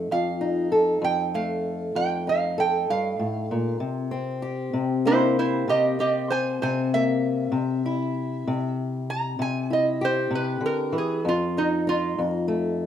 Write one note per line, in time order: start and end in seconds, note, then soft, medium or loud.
0.00 0.10 F2 medium
0.11 1.00 F2 medium
0.11 1.02 F5 medium
0.41 2.26 D#4 medium
0.72 2.57 A4 medium
1.02 1.94 F2 medium
1.02 1.34 G5 medium
1.34 3.78 A3 medium
1.34 1.95 F5 medium
1.95 2.89 F2 medium
1.95 2.27 G5 loud
2.27 3.78 D#4 medium
2.27 2.59 F5 medium
2.58 3.78 A4 medium
2.58 2.89 G5 medium
2.90 3.19 G2 medium
2.90 3.80 F5 medium
3.19 3.51 A2 medium
3.51 3.80 A#2 medium
3.80 4.73 C3 medium
4.11 5.99 C4 medium
4.42 6.29 G4 medium
4.73 5.67 C3 medium
5.05 6.92 A#3 medium
5.05 5.37 E4 medium
5.05 5.37 C5 medium
5.39 5.67 E4 medium
5.39 5.68 C5 medium
5.68 6.61 C3 medium
5.68 5.98 G4 medium
5.68 5.99 D#5 medium
5.99 7.85 C4 medium
5.99 6.28 G4 medium
5.99 6.30 D#5 medium
6.30 6.59 C5 medium
6.30 6.61 G#5 medium
6.62 7.50 C3 medium
6.62 6.90 C5 medium
6.62 6.92 G#5 medium
6.94 7.51 A#3 medium
6.94 8.75 E5 medium
7.52 8.46 C3 medium
7.86 9.69 E4 medium
8.47 9.38 C3 medium
9.10 9.40 A#5 loud
9.39 10.29 C3 medium
9.39 9.71 G#5 loud
9.70 11.22 E4 medium
9.70 10.02 D#5 medium
10.01 11.22 G4 medium
10.01 10.33 C5 loud
10.31 10.60 C3 medium
10.35 10.64 B4 medium
10.61 10.93 D3 medium
10.66 10.95 A#4 medium
10.92 11.25 E3 medium
10.98 11.27 G#4 medium
11.25 12.17 F2 medium
11.25 11.57 F4 medium
11.57 11.86 D#4 medium
11.57 11.88 D#4 medium
11.87 12.86 D#4 medium
11.87 12.19 F4 medium
12.18 12.86 F2 medium
12.48 12.86 A3 medium